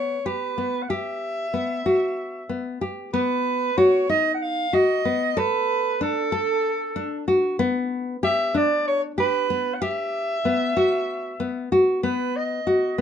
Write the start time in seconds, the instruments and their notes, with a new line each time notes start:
Already playing: nylon-string guitar B3, soprano saxophone C#5
0.26 nylon-string guitar G4, soprano saxophone B4
0.58 nylon-string guitar B3
0.83 soprano saxophone F#5
0.89 nylon-string guitar G4, soprano saxophone E5
1.54 nylon-string guitar B3
1.86 nylon-string guitar F#4
2.49 nylon-string guitar B3
2.81 nylon-string guitar G4
3.13 nylon-string guitar B3, soprano saxophone B4
3.78 nylon-string guitar F#4, soprano saxophone C#5
4.09 nylon-string guitar D#4, soprano saxophone D#5
4.34 soprano saxophone F#5
4.42 soprano saxophone F5
4.73 nylon-string guitar F#4, soprano saxophone D#5
5.05 nylon-string guitar B3
5.37 nylon-string guitar A4, soprano saxophone B4
6.01 nylon-string guitar D4, soprano saxophone A4
6.32 nylon-string guitar A4
6.96 nylon-string guitar D4
7.28 nylon-string guitar F#4
7.59 nylon-string guitar B3
8.23 nylon-string guitar G4, soprano saxophone E5
8.54 nylon-string guitar D4, soprano saxophone D5
8.88 soprano saxophone C#5
9.18 nylon-string guitar G4, soprano saxophone B4
9.50 nylon-string guitar B3
9.75 soprano saxophone F#5
9.82 nylon-string guitar G4, soprano saxophone E5
10.45 nylon-string guitar B3
10.77 nylon-string guitar F#4
11.40 nylon-string guitar B3
11.72 nylon-string guitar F#4
12.03 nylon-string guitar B3, soprano saxophone B4
12.36 soprano saxophone D#5
12.67 nylon-string guitar F#4
12.98 nylon-string guitar B3